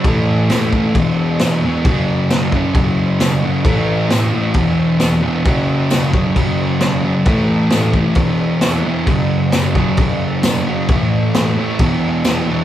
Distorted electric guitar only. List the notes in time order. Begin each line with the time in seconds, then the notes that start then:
0.06 A2 E3 A3
0.51 A2 E3 A3
0.74 A2 E3 A3
0.96 E2 B2 E3
1.40 E2 B2 E3
1.63 E2 B2 E3
1.87 F#2 C#3 F#3
2.32 F#2 C#3 F#3
2.54 F#2 C#3 F#3
2.75 F#2 C#3 F#3
3.20 F#2 C#3 F#3
3.43 F#2 C#3 F#3
3.64 A2 E3 A3
4.09 A2 E3 A3
4.33 A2 E3 A3
4.55 E2 B2 E3
5.00 E2 B2 E3
5.23 E2 B2 E3
5.45 F#2 C#3 F#3
5.91 F#2 C#3 F#3
6.13 F#2 C#3 F#3
6.35 F#2 C#3 F#3
6.80 F#2 C#3 F#3
7.03 F#2 C#3 F#3
7.26 A2 E3 A3
7.71 A2 E3 A3
7.94 A2 E3 A3
8.16 E2 B2 E3
8.61 E2 B2 E3
8.84 E2 B2 E3
9.06 F#2 C#3 F#3
9.52 F#2 C#3 F#3
9.76 F#2 C#3 F#3
9.99 F#2 C#3 F#3
10.43 F#2 C#3 F#3
10.67 F#2 C#3 F#3
10.90 A2 E3 A3
11.35 A2 E3 A3
11.58 A2 E3 A3
11.80 E2 B2 E3
12.26 E2 B2 E3
12.49 E2 B2 E3